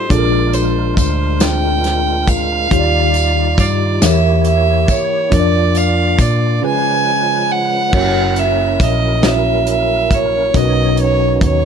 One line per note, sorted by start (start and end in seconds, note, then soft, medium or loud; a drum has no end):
0.00 0.12 D#4 medium
0.00 0.10 F4 medium
0.00 0.12 G4 medium
0.00 0.12 C5 medium
0.00 0.13 C5 medium
0.09 0.93 A#1 medium
0.09 1.37 A#2 medium
0.09 2.68 G#3 medium
0.09 0.90 D4 medium
0.09 2.68 D4 medium
0.09 0.91 F4 medium
0.09 2.68 F4 medium
0.09 0.91 G#4 medium
0.09 0.18 A4 medium
0.09 2.68 A#4 medium
0.09 0.56 D5 medium
0.09 kick medium
0.09 closed hi-hat medium
0.19 0.95 A#4 medium
0.53 0.97 C5 medium
0.53 closed hi-hat soft
0.53 tambourine soft
0.97 2.67 D2 medium
0.97 1.42 C5 medium
0.97 kick medium
0.97 closed hi-hat medium
0.97 tambourine medium
1.40 1.47 C4 medium
1.40 2.21 F4 medium
1.40 2.22 G#4 medium
1.40 2.22 C5 medium
1.40 2.31 G5 medium
1.40 snare loud
1.40 closed hi-hat loud
1.40 tambourine medium
1.46 2.24 D4 medium
1.84 snare soft
1.84 closed hi-hat medium
2.27 3.62 F5 loud
2.27 kick medium
2.27 closed hi-hat medium
2.27 tambourine medium
2.70 3.54 D#2 medium
2.70 3.98 D#3 medium
2.70 4.03 G3 medium
2.70 3.51 D#4 medium
2.70 4.03 D#4 medium
2.70 3.52 F4 medium
2.70 4.03 F4 medium
2.70 3.52 G4 medium
2.70 2.78 C5 medium
2.70 2.79 C#5 medium
2.70 kick loud
2.70 closed hi-hat medium
2.79 3.56 D5 medium
2.79 4.06 D5 medium
3.14 closed hi-hat soft
3.14 tambourine soft
3.58 3.98 G2 medium
3.58 4.05 D5 medium
3.58 kick loud
3.58 closed hi-hat medium
3.58 tambourine medium
4.01 4.85 E2 loud
4.01 5.29 E3 medium
4.01 5.32 A#3 medium
4.01 4.82 E4 medium
4.01 5.33 E4 medium
4.01 5.33 G4 medium
4.01 4.82 G4 medium
4.01 4.83 A#4 medium
4.01 5.32 C#5 medium
4.01 4.83 C#5 medium
4.01 4.46 E5 medium
4.01 snare loud
4.01 closed hi-hat medium
4.01 tambourine medium
4.44 4.92 E5 loud
4.44 closed hi-hat soft
4.88 5.36 C#5 medium
4.88 kick medium
4.88 closed hi-hat medium
4.88 tambourine medium
5.30 6.15 F2 medium
5.30 6.63 A#3 medium
5.30 6.12 D4 medium
5.30 6.63 D4 medium
5.30 6.12 F4 medium
5.30 6.64 F4 medium
5.30 6.13 A#4 medium
5.30 5.39 C#5 medium
5.30 6.63 D5 medium
5.30 kick medium
5.30 closed hi-hat medium
5.34 5.79 D5 medium
5.40 6.17 D5 loud
5.75 6.23 F5 medium
5.75 closed hi-hat soft
5.75 tambourine medium
6.18 6.59 A#2 medium
6.18 6.64 D5 medium
6.18 kick loud
6.18 closed hi-hat medium
6.18 tambourine soft
6.61 7.89 C#3 medium
6.61 7.94 F3 medium
6.61 7.94 G#3 medium
6.61 7.42 C#4 medium
6.61 7.94 C#4 medium
6.61 7.43 F4 medium
6.61 7.43 G#4 medium
6.61 7.44 B4 medium
6.61 7.94 B4 medium
6.65 7.53 G#5 loud
7.52 8.41 F#5 loud
7.92 8.76 F#1 medium
7.92 10.51 F#3 medium
7.92 10.51 A#3 medium
7.92 8.73 C#4 medium
7.92 10.51 C#4 medium
7.92 8.73 E4 medium
7.92 10.52 E4 medium
7.92 8.74 F#4 medium
7.92 8.74 A#4 medium
7.92 10.51 A#4 medium
7.92 8.74 C#5 loud
7.92 kick loud
7.92 crash medium
8.36 8.85 E5 medium
8.36 closed hi-hat soft
8.80 10.50 A#1 medium
8.80 9.29 D#5 medium
8.80 kick medium
8.80 closed hi-hat medium
9.22 10.03 C#4 medium
9.22 10.04 E4 medium
9.22 10.04 F#4 medium
9.22 10.04 A#4 medium
9.22 10.05 C#5 medium
9.22 snare loud
9.22 closed hi-hat medium
9.27 9.69 E5 medium
9.67 10.16 E5 loud
9.67 closed hi-hat medium
10.11 10.58 C#5 medium
10.11 kick medium
10.11 closed hi-hat medium
10.54 11.37 B1 loud
10.54 11.65 B2 medium
10.54 11.65 F#3 medium
10.54 11.65 B3 medium
10.54 11.35 C#4 medium
10.54 11.65 C#4 medium
10.54 11.35 D#4 medium
10.54 11.65 D#4 medium
10.54 11.35 F#4 medium
10.54 11.35 A#4 medium
10.54 11.36 B4 medium
10.54 11.65 C#5 medium
10.54 10.99 D#5 loud
10.54 kick medium
10.54 closed hi-hat loud
10.97 closed hi-hat soft
11.01 11.40 C#5 medium
11.41 11.65 D#2 medium
11.41 11.65 C#5 medium
11.41 kick loud
11.41 closed hi-hat medium